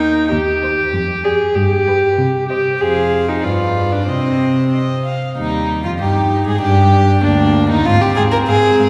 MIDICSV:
0, 0, Header, 1, 5, 480
1, 0, Start_track
1, 0, Key_signature, -3, "minor"
1, 0, Tempo, 621118
1, 248, Time_signature, 2, 2, 24, 8
1, 2169, Tempo, 641711
1, 4089, Tempo, 622407
1, 6805, End_track
2, 0, Start_track
2, 0, Title_t, "Violin"
2, 0, Program_c, 0, 40
2, 0, Note_on_c, 0, 79, 47
2, 231, Note_off_c, 0, 79, 0
2, 483, Note_on_c, 0, 79, 47
2, 663, Note_off_c, 0, 79, 0
2, 960, Note_on_c, 0, 80, 49
2, 1141, Note_off_c, 0, 80, 0
2, 1450, Note_on_c, 0, 79, 50
2, 1627, Note_off_c, 0, 79, 0
2, 1936, Note_on_c, 0, 75, 51
2, 2111, Note_off_c, 0, 75, 0
2, 2176, Note_on_c, 0, 77, 50
2, 2615, Note_off_c, 0, 77, 0
2, 2641, Note_on_c, 0, 74, 42
2, 3124, Note_on_c, 0, 75, 45
2, 3135, Note_off_c, 0, 74, 0
2, 3560, Note_off_c, 0, 75, 0
2, 3602, Note_on_c, 0, 75, 48
2, 3831, Note_off_c, 0, 75, 0
2, 3850, Note_on_c, 0, 77, 49
2, 4084, Note_off_c, 0, 77, 0
2, 4089, Note_on_c, 0, 63, 59
2, 4425, Note_off_c, 0, 63, 0
2, 4446, Note_on_c, 0, 65, 47
2, 4562, Note_off_c, 0, 65, 0
2, 4566, Note_on_c, 0, 67, 54
2, 4928, Note_on_c, 0, 68, 57
2, 4940, Note_off_c, 0, 67, 0
2, 5052, Note_on_c, 0, 67, 67
2, 5063, Note_off_c, 0, 68, 0
2, 5526, Note_on_c, 0, 62, 65
2, 5538, Note_off_c, 0, 67, 0
2, 5877, Note_on_c, 0, 63, 63
2, 5889, Note_off_c, 0, 62, 0
2, 5994, Note_off_c, 0, 63, 0
2, 5998, Note_on_c, 0, 77, 59
2, 6060, Note_off_c, 0, 77, 0
2, 6238, Note_on_c, 0, 77, 52
2, 6300, Note_off_c, 0, 77, 0
2, 6485, Note_on_c, 0, 77, 55
2, 6547, Note_off_c, 0, 77, 0
2, 6729, Note_on_c, 0, 77, 46
2, 6790, Note_off_c, 0, 77, 0
2, 6805, End_track
3, 0, Start_track
3, 0, Title_t, "Violin"
3, 0, Program_c, 1, 40
3, 0, Note_on_c, 1, 70, 44
3, 239, Note_off_c, 1, 70, 0
3, 487, Note_on_c, 1, 72, 48
3, 665, Note_off_c, 1, 72, 0
3, 964, Note_on_c, 1, 74, 45
3, 1143, Note_off_c, 1, 74, 0
3, 1454, Note_on_c, 1, 71, 48
3, 1629, Note_off_c, 1, 71, 0
3, 1929, Note_on_c, 1, 72, 44
3, 2108, Note_off_c, 1, 72, 0
3, 2172, Note_on_c, 1, 72, 48
3, 2640, Note_on_c, 1, 71, 46
3, 2651, Note_off_c, 1, 72, 0
3, 3113, Note_off_c, 1, 71, 0
3, 3118, Note_on_c, 1, 72, 47
3, 3919, Note_off_c, 1, 72, 0
3, 4094, Note_on_c, 1, 63, 60
3, 4428, Note_off_c, 1, 63, 0
3, 4452, Note_on_c, 1, 65, 57
3, 4500, Note_off_c, 1, 65, 0
3, 4568, Note_on_c, 1, 67, 57
3, 4923, Note_off_c, 1, 67, 0
3, 4934, Note_on_c, 1, 68, 58
3, 5037, Note_off_c, 1, 68, 0
3, 5042, Note_on_c, 1, 67, 72
3, 5514, Note_off_c, 1, 67, 0
3, 5526, Note_on_c, 1, 62, 67
3, 5873, Note_off_c, 1, 62, 0
3, 5878, Note_on_c, 1, 63, 75
3, 6005, Note_on_c, 1, 65, 91
3, 6017, Note_off_c, 1, 63, 0
3, 6123, Note_on_c, 1, 67, 82
3, 6134, Note_off_c, 1, 65, 0
3, 6234, Note_off_c, 1, 67, 0
3, 6239, Note_on_c, 1, 68, 76
3, 6288, Note_off_c, 1, 68, 0
3, 6356, Note_on_c, 1, 70, 81
3, 6406, Note_off_c, 1, 70, 0
3, 6476, Note_on_c, 1, 68, 83
3, 6805, Note_off_c, 1, 68, 0
3, 6805, End_track
4, 0, Start_track
4, 0, Title_t, "Viola"
4, 0, Program_c, 2, 41
4, 0, Note_on_c, 2, 63, 75
4, 237, Note_off_c, 2, 63, 0
4, 242, Note_on_c, 2, 67, 86
4, 958, Note_on_c, 2, 68, 73
4, 970, Note_off_c, 2, 67, 0
4, 1198, Note_on_c, 2, 67, 75
4, 1209, Note_off_c, 2, 68, 0
4, 1918, Note_off_c, 2, 67, 0
4, 1922, Note_on_c, 2, 67, 72
4, 2169, Note_on_c, 2, 68, 73
4, 2180, Note_off_c, 2, 67, 0
4, 2525, Note_on_c, 2, 63, 61
4, 2537, Note_off_c, 2, 68, 0
4, 2639, Note_on_c, 2, 65, 62
4, 2651, Note_off_c, 2, 63, 0
4, 3003, Note_on_c, 2, 62, 55
4, 3015, Note_off_c, 2, 65, 0
4, 3117, Note_off_c, 2, 62, 0
4, 3121, Note_on_c, 2, 60, 62
4, 3598, Note_off_c, 2, 60, 0
4, 4088, Note_on_c, 2, 55, 51
4, 4539, Note_off_c, 2, 55, 0
4, 4573, Note_on_c, 2, 63, 51
4, 5038, Note_off_c, 2, 63, 0
4, 5042, Note_on_c, 2, 62, 54
4, 5517, Note_on_c, 2, 58, 60
4, 5529, Note_off_c, 2, 62, 0
4, 5989, Note_off_c, 2, 58, 0
4, 5994, Note_on_c, 2, 60, 77
4, 6805, Note_off_c, 2, 60, 0
4, 6805, End_track
5, 0, Start_track
5, 0, Title_t, "Cello"
5, 0, Program_c, 3, 42
5, 0, Note_on_c, 3, 39, 59
5, 227, Note_off_c, 3, 39, 0
5, 245, Note_on_c, 3, 39, 67
5, 625, Note_off_c, 3, 39, 0
5, 719, Note_on_c, 3, 41, 57
5, 1101, Note_off_c, 3, 41, 0
5, 1203, Note_on_c, 3, 43, 69
5, 1584, Note_off_c, 3, 43, 0
5, 1684, Note_on_c, 3, 48, 60
5, 2066, Note_off_c, 3, 48, 0
5, 2172, Note_on_c, 3, 41, 51
5, 2637, Note_on_c, 3, 43, 48
5, 2649, Note_off_c, 3, 41, 0
5, 3124, Note_on_c, 3, 48, 50
5, 3135, Note_off_c, 3, 43, 0
5, 3939, Note_off_c, 3, 48, 0
5, 4091, Note_on_c, 3, 39, 57
5, 4452, Note_on_c, 3, 41, 51
5, 4463, Note_off_c, 3, 39, 0
5, 4569, Note_on_c, 3, 43, 52
5, 4580, Note_off_c, 3, 41, 0
5, 4925, Note_off_c, 3, 43, 0
5, 4930, Note_on_c, 3, 44, 60
5, 4978, Note_off_c, 3, 44, 0
5, 5055, Note_on_c, 3, 43, 60
5, 5521, Note_off_c, 3, 43, 0
5, 5530, Note_on_c, 3, 38, 62
5, 5885, Note_on_c, 3, 39, 68
5, 5897, Note_off_c, 3, 38, 0
5, 6001, Note_off_c, 3, 39, 0
5, 6006, Note_on_c, 3, 44, 69
5, 6067, Note_off_c, 3, 44, 0
5, 6247, Note_on_c, 3, 44, 58
5, 6309, Note_off_c, 3, 44, 0
5, 6488, Note_on_c, 3, 44, 55
5, 6550, Note_off_c, 3, 44, 0
5, 6723, Note_on_c, 3, 44, 56
5, 6785, Note_off_c, 3, 44, 0
5, 6805, End_track
0, 0, End_of_file